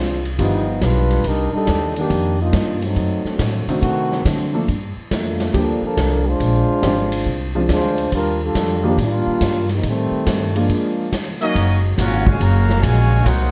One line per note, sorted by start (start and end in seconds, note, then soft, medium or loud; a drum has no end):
0.00 0.37 C2 medium
0.00 0.22 G#3 medium
0.00 0.22 C4 medium
0.00 0.22 D4 medium
0.00 0.22 F4 medium
0.25 ride medium
0.39 0.80 G1 medium
0.39 0.65 D#3 medium
0.39 0.80 F3 medium
0.39 0.65 G3 medium
0.39 0.79 G3 medium
0.39 0.65 B3 medium
0.39 0.79 B3 medium
0.39 0.65 D4 medium
0.39 0.80 D#4 medium
0.39 0.65 F4 medium
0.39 kick soft
0.39 ride medium
0.81 1.23 B1 loud
0.81 1.24 G3 medium
0.81 1.24 D4 medium
0.81 1.25 F4 medium
0.81 1.25 B4 loud
0.81 kick soft
0.81 snare medium
0.81 hi-hat pedal medium
0.81 ride medium
1.10 snare soft
1.10 ride soft
1.24 1.51 C2 medium
1.24 1.52 G3 medium
1.24 1.52 D4 medium
1.24 1.53 D#4 medium
1.24 1.54 A#4 loud
1.24 kick soft
1.24 ride medium
1.53 1.93 G3 medium
1.53 1.93 D4 medium
1.53 1.94 D#4 medium
1.53 1.94 A4 loud
1.53 muted upright bass stroke soft
1.67 2.09 D#2 medium
1.67 kick soft
1.67 snare medium
1.67 hi-hat pedal medium
1.67 ride medium
1.96 2.37 D#3 medium
1.96 2.37 A#3 medium
1.96 2.37 D4 medium
1.96 2.37 G4 loud
1.96 ride soft
2.10 2.52 F2 medium
2.10 kick soft
2.10 ride medium
2.40 2.80 A#3 medium
2.40 2.80 D4 medium
2.40 2.80 D#4 medium
2.40 2.80 F4 medium
2.53 2.95 G2 medium
2.53 kick soft
2.53 snare medium
2.53 hi-hat pedal soft
2.53 ride medium
2.82 3.24 F#3 medium
2.82 3.24 A3 medium
2.82 3.24 C4 medium
2.82 3.25 D#4 medium
2.82 ride soft
2.96 3.23 F#2 medium
2.96 kick soft
2.96 ride medium
3.25 3.68 F#3 medium
3.25 3.68 A3 medium
3.25 3.68 C4 medium
3.25 3.68 D4 medium
3.25 muted upright bass stroke soft
3.25 snare soft
3.39 3.66 A2 medium
3.39 kick soft
3.39 snare medium
3.39 hi-hat pedal medium
3.39 ride medium
3.67 4.23 D#3 medium
3.67 4.23 A3 medium
3.67 4.23 C4 medium
3.67 4.23 D4 medium
3.67 4.23 F#4 medium
3.67 muted upright bass stroke soft
3.67 ride soft
3.81 4.24 C3 medium
3.81 4.22 D#3 medium
3.81 4.22 A3 medium
3.81 4.22 C4 medium
3.81 4.22 F#4 loud
3.81 kick soft
3.81 ride medium
4.12 snare soft
4.25 4.67 D3 loud
4.25 4.59 F#3 medium
4.25 4.59 A3 medium
4.25 4.59 C4 medium
4.25 4.59 D4 medium
4.25 kick soft
4.25 snare medium
4.25 hi-hat pedal medium
4.25 ride medium
4.53 4.66 F3 medium
4.53 4.67 A3 medium
4.53 4.67 A#3 medium
4.53 4.67 D4 medium
4.53 4.67 A4 medium
4.68 4.95 G2 medium
4.68 kick soft
4.68 ride medium
4.97 muted upright bass stroke soft
5.11 5.53 F2 medium
5.11 5.52 A3 medium
5.11 5.52 A#3 medium
5.11 5.52 D4 medium
5.11 5.51 F4 medium
5.11 kick soft
5.11 snare medium
5.11 hi-hat pedal medium
5.11 ride medium
5.40 snare medium
5.40 ride soft
5.54 5.81 D2 medium
5.54 6.20 F3 medium
5.54 5.83 F3 medium
5.54 6.20 G3 medium
5.54 6.20 A#3 medium
5.54 5.84 A#3 medium
5.54 6.20 D4 medium
5.54 5.82 D4 medium
5.54 6.20 G4 medium
5.54 5.83 A4 medium
5.54 kick soft
5.54 ride medium
5.82 6.27 F3 medium
5.82 6.26 D4 medium
5.82 6.27 A4 medium
5.82 6.26 A#4 loud
5.82 muted upright bass stroke soft
5.97 6.39 C2 medium
5.97 kick soft
5.97 snare medium
5.97 hi-hat pedal medium
5.97 ride medium
6.27 7.55 G#3 medium
6.27 7.56 D4 loud
6.27 7.55 F4 medium
6.27 7.55 C5 loud
6.40 6.67 A#1 medium
6.40 kick soft
6.40 ride medium
6.82 7.25 G#1 medium
6.82 7.08 F3 medium
6.82 7.08 G#3 medium
6.82 7.09 C4 medium
6.82 7.09 D4 medium
6.82 7.09 G4 medium
6.82 kick soft
6.82 snare medium
6.82 hi-hat pedal medium
6.82 ride medium
7.12 ride medium
7.26 7.68 C2 medium
7.26 kick soft
7.55 8.09 F3 medium
7.55 8.09 G#3 medium
7.55 8.10 C4 medium
7.55 8.09 D4 medium
7.55 8.10 F4 medium
7.69 8.10 D2 loud
7.69 8.09 G#3 medium
7.69 8.09 D4 medium
7.69 8.10 F4 medium
7.69 8.09 C5 loud
7.69 kick soft
7.69 snare medium
7.69 hi-hat pedal medium
7.69 ride medium
7.98 ride soft
8.12 8.53 D#2 medium
8.12 8.40 G3 medium
8.12 8.40 D4 medium
8.12 8.40 F4 medium
8.12 8.40 A#4 loud
8.12 kick soft
8.12 ride medium
8.43 8.85 G3 medium
8.43 8.85 D4 medium
8.43 8.85 F4 medium
8.43 8.85 A4 loud
8.55 8.96 F2 medium
8.55 kick soft
8.55 snare medium
8.55 hi-hat pedal medium
8.55 ride medium
8.83 9.37 D#3 medium
8.83 8.98 F3 medium
8.83 9.38 G3 medium
8.83 9.38 A#3 medium
8.83 8.98 A#3 medium
8.83 9.38 D4 medium
8.83 8.98 D4 medium
8.83 9.38 F4 medium
8.83 8.98 G4 loud
8.97 9.24 A2 medium
8.97 9.67 G3 medium
8.97 9.67 A#3 medium
8.97 9.67 D4 medium
8.97 9.67 F4 loud
8.97 kick soft
8.97 ride medium
9.27 muted upright bass stroke soft
9.41 9.82 G2 medium
9.41 kick soft
9.41 snare medium
9.41 hi-hat pedal medium
9.41 ride medium
9.69 9.85 F3 medium
9.69 9.85 G3 medium
9.69 9.85 A#3 medium
9.69 9.85 D#4 medium
9.69 snare soft
9.69 ride soft
9.83 10.10 A2 medium
9.83 10.53 D#3 medium
9.83 10.53 G3 medium
9.83 10.53 A3 medium
9.83 10.53 C4 loud
9.83 kick soft
9.83 ride medium
10.11 muted upright bass stroke soft
10.26 10.68 G2 medium
10.26 kick soft
10.26 snare medium
10.26 hi-hat pedal medium
10.26 ride medium
10.55 11.09 F3 medium
10.55 11.13 F3 medium
10.55 11.09 G#3 medium
10.55 11.13 G#3 medium
10.55 11.10 A#3 medium
10.55 11.13 A#3 medium
10.55 11.10 D4 medium
10.55 11.13 D4 medium
10.55 11.10 F4 medium
10.55 ride soft
10.69 kick soft
10.69 ride medium
11.12 kick soft
11.12 snare medium
11.12 hi-hat pedal medium
11.12 ride medium
11.41 11.81 F#3 medium
11.41 11.81 A#3 loud
11.41 11.81 C#4 loud
11.41 11.81 D#4 medium
11.41 11.81 F#4 medium
11.41 11.81 A#4 medium
11.41 11.81 D#5 loud
11.41 ride soft
11.55 11.97 F#1 medium
11.55 13.25 C#3 medium
11.55 13.51 F#3 medium
11.55 13.24 G#3 medium
11.55 13.25 F#4 medium
11.55 kick soft
11.55 ride medium
11.96 12.39 G#1 medium
11.96 12.24 A#3 medium
11.96 12.24 C#4 medium
11.96 12.26 C#4 medium
11.96 12.26 F4 medium
11.96 12.24 F#4 medium
11.96 12.25 A#4 medium
11.96 12.26 F#5 loud
11.96 kick soft
11.96 snare soft
11.96 hi-hat pedal medium
11.96 ride medium
12.25 12.40 A#2 medium
12.25 12.38 C#3 medium
12.25 12.40 G#3 medium
12.25 12.41 F#4 medium
12.25 12.41 C#5 medium
12.25 12.41 F5 medium
12.25 12.41 G#5 medium
12.25 kick medium
12.39 12.82 F#1 medium
12.39 12.81 C#3 loud
12.39 12.82 F#3 loud
12.39 12.82 A#3 loud
12.39 12.82 F#4 medium
12.39 12.83 C#5 medium
12.39 12.83 F5 medium
12.39 12.84 A#5 loud
12.39 kick soft
12.39 ride medium
12.69 snare medium
12.81 13.25 A#1 loud
12.81 13.25 A#2 medium
12.81 13.25 C#3 medium
12.81 13.25 G#3 medium
12.81 13.26 F#4 medium
12.81 13.26 C#5 medium
12.81 13.26 F5 medium
12.81 13.26 G#5 loud
12.81 kick soft
12.81 hi-hat pedal medium
12.81 ride medium
13.23 13.51 C2 medium
13.23 13.51 C3 medium
13.23 13.51 A#3 loud
13.23 13.51 A#3 medium
13.23 13.51 D#4 loud
13.23 13.51 D#4 medium
13.23 13.51 F#4 medium
13.23 13.51 A#4 medium
13.23 13.51 C5 loud
13.23 13.51 F#5 loud
13.23 kick soft
13.23 snare soft
13.23 ride medium